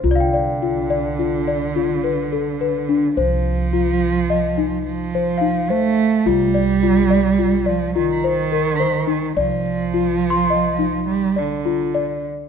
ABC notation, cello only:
X:1
M:11/8
L:1/8
Q:1/4=106
K:Gm
V:1 name="Cello" clef=bass
D,8- D,3 | F,6 F,3 A,2 | G,4- G, F, E,4- E, | F,6 G, D,3 z |]